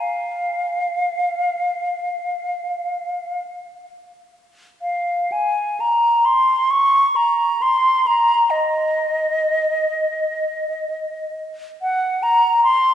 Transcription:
0.00 F5
4.82 F5
5.32 G#5
5.80 A#5
6.25 C6
6.71 C#6
7.16 A#5
7.62 C6
8.07 A#5
8.50 D#5
11.82 F#5
12.23 A#5
12.64 C6

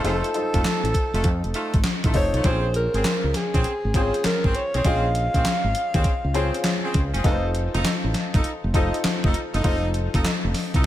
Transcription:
Already playing: D#4 F4 A4 C5
0.04 F1 A3 D#4 F4 A4 C5, closed hi-hat
0.24 closed hi-hat
0.34 D#4 F4 A4 C5, closed hi-hat
0.54 F1 A3 D#4 F4 A4, kick, closed hi-hat
0.64 snare, clap, closed hi-hat
0.83 A1, closed hi-hat
0.94 kick, closed hi-hat
1.13 F1 A3 D#4 F4 A4, closed hi-hat
1.24 F2, kick, closed hi-hat
1.44 F1, closed hi-hat
1.54 A3 D#4 F4 A4, closed hi-hat
1.74 G#1, kick, closed hi-hat
1.84 snare, clap, closed hi-hat
2.04 A1 A3 D#4 F4 A4, kick, closed hi-hat
2.14 F1 D#4 F4 A4 C5 C#5, kick, open hi-hat
2.34 B1 A3 D#4 F4 A4, closed hi-hat
2.44 A#1 C4 C#4 F4 G#4 C5, kick, closed hi-hat
2.74 A#4, closed hi-hat
2.94 G#1 C4 C#4 G#4 C5, closed hi-hat
3.04 snare, clap, closed hi-hat
3.24 C#2
3.34 G#4, snare, closed hi-hat
3.54 A#1 C4 C#4 G#4 C5, kick, closed hi-hat
3.64 muted fretless electric bass stroke, closed hi-hat
3.85 G#1
3.94 C4 C#4 F4 G#4 C5, kick, closed hi-hat
4.01 C#4
4.14 closed hi-hat
4.24 A#4, muted fretless electric bass stroke, snare, clap, closed hi-hat
4.44 G#1 C4 C#4 G#4 C5, kick
4.55 C#5, closed hi-hat
4.74 B1 C4 C#4 G#4 C5, closed hi-hat
4.84 A#1 C4 C#4 F4 G#4 C5 D#5 F5, kick, closed hi-hat
5.15 closed hi-hat
5.34 A#1 C4 C#4 G#4 C5, kick, closed hi-hat
5.45 snare, clap, closed hi-hat
5.64 G#1
5.75 closed hi-hat
5.94 D#2 C4 C#4 G#4 C5, kick, closed hi-hat
6.04 muted fretless electric bass stroke, kick, closed hi-hat
6.24 C#2
6.34 C4 C#4 F4 G#4 C5, closed hi-hat
6.54 closed hi-hat
6.64 snare, clap, closed hi-hat
6.84 C4 C#4 G#4 C5
6.94 C#2, kick, closed hi-hat
7.14 F#1 C4 C#4 G#4 C5, closed hi-hat
7.24 F1 D#4 F4 A4 B4 D#5, kick, closed hi-hat
7.32 C5
7.55 closed hi-hat
7.74 F1 D#4 F4 A4 D#5, closed hi-hat
7.84 snare, clap, closed hi-hat
8.04 A1
8.14 snare, closed hi-hat
8.34 G#1 D#4 F4 A4 D#5, kick, closed hi-hat
8.44 muted fretless electric bass stroke, closed hi-hat
8.64 F1
8.74 D#4 F4 A4 C5 D#5, kick, closed hi-hat
8.94 closed hi-hat
9.04 muted fretless electric bass stroke, snare, clap, closed hi-hat
9.24 F1 D#4 F4 A4 D#5, kick
9.34 closed hi-hat
9.54 F#1 D#4 F4 A4 D#5, closed hi-hat
9.64 F1 D#4 F4 A4 C5 D#5, kick, closed hi-hat
9.94 closed hi-hat
10.14 F1 D#4 F4 A4 D#5, kick, closed hi-hat
10.24 snare, clap, closed hi-hat
10.44 F1
10.54 snare, open hi-hat
10.74 C2 D#4 F4 A4 D#5, kick, closed hi-hat

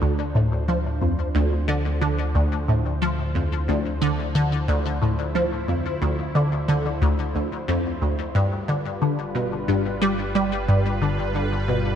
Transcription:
Already playing: D2 F3 D4 C5
0.02 D2
0.35 A2
0.68 F3
1.01 F2
1.35 D2
1.68 D3
2.01 D3
2.35 D2
2.68 A2
3.02 F3 E4
3.35 F2
3.68 D2
4.02 D3
4.35 D3
4.68 D2
5.02 A2
5.35 F3
5.68 F2
6.02 D2
6.35 D3
6.68 D3
7.02 D2
7.35 D2
7.68 F2
8.02 D2
8.35 G1 G2 G3 F4 B4
8.68 D3
9.02 D3
9.35 B2
9.68 G2
10.02 G3
10.35 G3
10.68 G2
11.02 D3
11.35 D3
11.68 B2

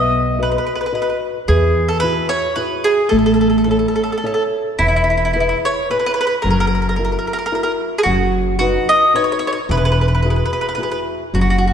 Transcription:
Already playing: B1 B3 D#5
0.38 F#4 B4 D#5
0.43 B4
0.52 B4
0.58 B4
0.67 B4
0.75 B4
0.81 B4
0.86 B4
0.92 F#4 B4 D#5
1.02 B4
1.10 B4
1.48 E2 E3 G#4
1.89 A4
2.00 E4 F#4 G#4 B4
2.29 C#5
2.56 E4 F#4 G#4 B4
2.84 G#4
3.09 A1 A3 A4
3.19 A4
3.26 A4
3.34 A4
3.41 A4
3.50 A4
3.58 A4
3.64 E4 A4 C#5
3.71 A4
3.79 A4
3.88 A4
3.96 A4
4.04 A4
4.12 A4
4.18 A4
4.24 E4 A4 C#5
4.34 A4
4.79 E1 E3 E4
4.88 E4
4.96 E4
5.04 E4
5.10 E4
5.17 E4
5.25 E4
5.33 E4 G#4 B4
5.40 E4
5.49 E4
5.65 C#5
5.90 E4 G#4 B4
5.99 B4
6.06 B4
6.14 B4
6.21 B4
6.27 B4
6.42 F#1 F#3 A#4
6.50 A#4
6.60 A#4
6.67 A#4
6.75 A#4
6.82 A#4
6.89 A#4
6.96 E4 F#4 A#4
7.05 A#4
7.12 A#4
7.19 A#4
7.27 A#4
7.33 A#4
7.39 A#4
7.46 A#4
7.52 E4 F#4 A#4
7.63 A#4
7.98 G#4
8.03 F#1 F#3 F#4
8.59 D#4 F#4 B4
8.89 D#5
9.14 D#4 F#4 B4 C#5
9.24 C#5
9.32 C#5
9.39 C#5
9.47 C#5
9.53 C#5
9.69 E1 E3 B4
9.77 B4
9.85 B4
9.92 B4
10.01 B4
10.08 B4
10.15 B4
10.22 E4 F#4 G#4 B4
10.30 B4
10.36 B4
10.46 B4
10.53 B4
10.61 B4
10.69 B4
10.75 E4 F#4 B4
10.79 G#4 B4
10.91 B4
11.34 F#1 F#3 F#4
11.41 F#4
11.50 F#4
11.58 F#4
11.67 F#4

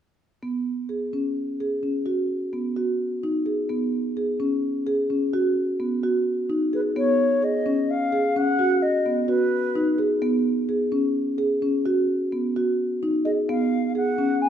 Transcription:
0.43 B3
0.89 G#4
1.13 C#4
1.60 G#4
1.83 C#4
2.06 F#4
2.53 B3
2.76 F#4
3.23 D#4
3.46 G#4
3.70 B3
4.17 G#4
4.40 C#4
4.87 G#4
5.10 C#4
5.33 F#4
5.80 B3
6.03 F#4
6.50 D#4
6.73 G#4 B4
6.96 B3 C#5
7.42 G#4 D#5
7.66 C#4
7.90 F5
8.12 G#4
8.36 C#4 F#5
8.59 F#4
8.82 D#5
9.06 B3
9.28 F#4 B4
9.75 D#4
9.98 G#4
10.22 B3
10.69 G#4
10.92 C#4
11.38 G#4
11.62 C#4
11.86 F#4
12.32 B3
12.56 F#4
13.03 D#4
13.24 G#4 D#5
13.49 B3 F5
13.95 G#4 F#5
14.18 C#4
14.41 G#5

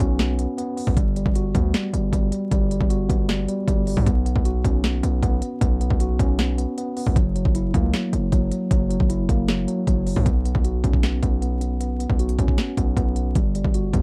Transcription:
Already playing: B3 F#4
0.00 B1 C#4, closed hi-hat
0.19 B3, snare, closed hi-hat
0.39 B3, closed hi-hat
0.58 B3, closed hi-hat
0.77 B3, open hi-hat
0.87 B1, kick
0.97 G1 G3, kick, closed hi-hat
1.16 G3, closed hi-hat
1.26 G1, kick
1.35 F#4, closed hi-hat
1.55 D2 B3, kick, closed hi-hat
1.74 G3, snare, closed hi-hat
1.93 G1 G3, closed hi-hat
2.12 G1 G3, kick, closed hi-hat
2.32 G3, closed hi-hat
2.51 G1 G3, kick, closed hi-hat
2.71 G3, closed hi-hat
2.81 G1, kick
2.90 F#4, closed hi-hat
3.09 G1 B3, kick, closed hi-hat
3.28 G3, snare, closed hi-hat
3.48 G3, closed hi-hat
3.68 G1 G3, kick, closed hi-hat
3.87 G3, open hi-hat
3.97 G2, kick
4.06 B1 B3, kick, closed hi-hat
4.25 B3, closed hi-hat
4.36 B1, kick
4.45 F#4, closed hi-hat
4.64 B1 C#4, kick, closed hi-hat
4.84 B3, snare, closed hi-hat
5.03 B1 B3, closed hi-hat
5.22 B1 B3, kick, closed hi-hat
5.42 B3, closed hi-hat
5.61 B1 B3, kick, closed hi-hat
5.81 B3, closed hi-hat
5.90 B1, kick
6.00 F#4, closed hi-hat
6.19 B1 C#4, kick, closed hi-hat
6.39 B3, snare, closed hi-hat
6.58 B3, closed hi-hat
6.78 B3, closed hi-hat
6.97 B3, open hi-hat
7.07 B1, kick
7.16 F#1 F#3, kick, closed hi-hat
7.35 F#3, closed hi-hat
7.45 F#1, kick
7.55 E4, closed hi-hat
7.74 C#2 A#3, kick, closed hi-hat
7.93 F#3, snare, closed hi-hat
8.13 F#1 F#3, closed hi-hat
8.32 F#1 F#3, kick, closed hi-hat
8.51 F#3, closed hi-hat
8.71 F#1 F#3, kick, closed hi-hat
8.90 F#3, closed hi-hat
9.00 F#1, kick
9.10 E4, closed hi-hat
9.29 F#1 A#3, kick, closed hi-hat
9.48 F#3, snare, closed hi-hat
9.68 F#3, closed hi-hat
9.87 F#1 F#3, kick, closed hi-hat
10.06 F#3, open hi-hat
10.16 F#2, kick
10.25 B1 B3, kick, closed hi-hat
10.45 B3, closed hi-hat
10.55 B1, kick
10.64 F#4, closed hi-hat
10.84 B1 C#4, kick, closed hi-hat
10.93 kick
11.03 B3, snare, closed hi-hat
11.23 B1 B3, kick, closed hi-hat
11.42 B3, closed hi-hat
11.61 B3, closed hi-hat
11.80 B3, closed hi-hat
11.99 B3, closed hi-hat
12.10 B1, kick
12.19 F#4, closed hi-hat
12.29 closed hi-hat
12.39 B1 C#4, kick, closed hi-hat
12.48 kick
12.58 B3, snare, closed hi-hat
12.77 B1 B3, kick, closed hi-hat
12.96 B1 B3, kick, closed hi-hat
13.16 B3, closed hi-hat
13.35 G1 G3, kick, closed hi-hat
13.55 G3, closed hi-hat
13.65 G1, kick
13.74 F#4, closed hi-hat
13.93 D2 B3, kick, closed hi-hat

